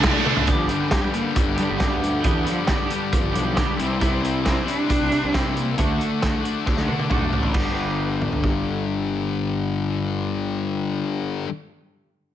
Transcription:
Already playing: C2
0.04 D3 F#3 A3 D4, kick, snare, ride
0.25 D3 F#3 A3 D4, high tom
0.36 floor tom
0.46 G1 G2 D3 F3 G3 B3 D4 G4, kick, closed hi-hat
0.67 G2 D3 G3 B3 D4 G4, closed hi-hat
0.72 D3
0.88 G2 D3 G3 B3 D4 G4, kick, snare, closed hi-hat
0.92 G3
1.11 G2 D3 G3 B3 D4 G4, closed hi-hat
1.15 A#3
1.36 G2 D3 G3, kick, closed hi-hat
1.47 G1
1.54 G3 B3 D4 G4, closed hi-hat
1.59 G2 D3 G3
1.70 G1
1.76 G2 D3 G3 B3 D4 G4
1.80 D2 G2 D3 G3, kick, snare, closed hi-hat
2.02 G2 D3 G3, closed hi-hat
2.19 G2 D3 G3 B3 D4 G4
2.24 E2 G2 D3 G3, kick, closed hi-hat
2.42 G2 D3 G3 B3 D4 G4
2.46 F3 G3, closed hi-hat
2.64 G2 G3 B3 D4 G4, snare, closed hi-hat
2.68 D3 G3, kick
2.86 G2 G3 B3 D4 G4
2.90 D3 G3, closed hi-hat
3.13 G2 D3 F3 G3, kick, closed hi-hat
3.24 G1
3.31 B1 G2 D3 G3 B3 D4 G4, closed hi-hat
3.54 G2 D3 G3 B3 D4 G4, kick, snare, closed hi-hat
3.61 G3
3.77 C2 C3 E3 G3 C4 E4, closed hi-hat
3.83 C4
3.98 C3 E3 G3 C4 E4, kick, closed hi-hat
4.06 C4
4.21 C3 G3 C4 E4, closed hi-hat
4.43 C3 E3 G3 C4 E4, kick, snare, closed hi-hat
4.49 C4
4.64 C3 G3 C4 E4, closed hi-hat
4.71 D4
4.87 C3 G3 C4, kick, closed hi-hat
5.01 C2
5.09 C3 G3 C4 E4, closed hi-hat
5.13 C3
5.24 C2
5.32 C2 C3 E3 G3 C4 E4, kick, snare, closed hi-hat
5.36 C4
5.54 C3 G3 C4, closed hi-hat
5.59 A#3
5.76 D2 D3 A3 D4 F#4, kick, closed hi-hat
5.84 A3
5.98 D3 A3 D4 F#4, closed hi-hat
6.20 D3 A3 D4 F#4, kick, snare, closed hi-hat
6.43 D3 A3 D4 F#4, closed hi-hat
6.65 D3 A3 D4, kick, snare
6.77 D2, snare
6.86 D3 A3 D4 F#4, high tom
6.99 high tom
7.09 B1 D3 A3 D4 F#4, kick, mid tom
7.21 mid tom
7.32 A1 D3 A3 D4, floor tom
7.43 floor tom
7.52 G1 G2 D3 G3 B3 D4 G4, kick, crash
7.56 D3 G3
8.22 mid tom
8.32 floor tom
8.44 kick

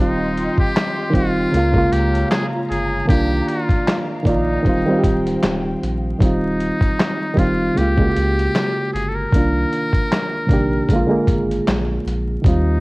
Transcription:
Already playing: D#1 D#3 G3 F4 D#5 G5 C6
0.00 C4 D#4 F4
0.37 closed hi-hat
0.58 G4, kick
0.76 snare, clap, closed hi-hat
1.10 F1 D#3 G3, kick
1.14 C4 F4, closed hi-hat
1.51 C#2 C#3 G#3 F4 C#5 F5 A#5, closed hi-hat
1.55 A#3 F4
1.72 C#3 G#3 A#3, kick
1.78 F4
1.92 C#2 G4, closed hi-hat
2.15 closed hi-hat
2.30 G#4, snare, clap, closed hi-hat
2.70 G1 G#4, closed hi-hat
3.05 C2 D3 A#3 G4, kick
3.09 D#3 D4 F4 D5 F5, closed hi-hat
3.48 F4, closed hi-hat
3.69 kick, closed hi-hat
3.87 snare, clap, closed hi-hat
4.23 A#1 D#3 A#3 D#4, kick, closed hi-hat
4.27 F4 D5
4.63 D#1 D#3 G3 C5 G5, kick, closed hi-hat
4.67 C4 F4
4.86 D1 D#3 G3
4.90 C4 F4
4.99 G4
5.04 D1, kick, closed hi-hat
5.27 closed hi-hat
5.43 D#1, snare, clap, closed hi-hat
5.83 A#1, closed hi-hat
6.19 D#1 D#3 G3 D#4, kick, closed hi-hat
6.23 C4 F4
6.60 closed hi-hat
6.81 kick, closed hi-hat
7.00 snare, clap, closed hi-hat
7.34 F1 D#3 G3, kick
7.38 C4 F4, closed hi-hat
7.74 C#2 C#3 G#3 G4, closed hi-hat
7.79 A#3 F4
7.97 C#3 G#3, kick
8.01 A#3 F#4
8.10 G4
8.16 C#2, closed hi-hat
8.39 closed hi-hat
8.55 snare, clap, closed hi-hat
8.93 G1 G#4, closed hi-hat
9.09 A4
9.15 A#4
9.32 C2 D#3 A#3, kick, closed hi-hat
9.36 D4 F4
9.73 closed hi-hat
9.93 kick, closed hi-hat
10.12 snare, clap, closed hi-hat
10.47 A#1 C2 D#3 A#3, kick, closed hi-hat
10.52 D4 G4
10.89 A#1 D3 G#3, kick, closed hi-hat
10.93 A#3 F4
11.06 D3 G#3
11.11 G#1 A#3 G#4
11.27 G#1, kick, closed hi-hat
11.51 closed hi-hat
11.67 A#1, snare, clap, closed hi-hat
12.06 A#1, closed hi-hat
12.42 D#2 D#3 G3 D#4, kick, closed hi-hat
12.46 C4 F4

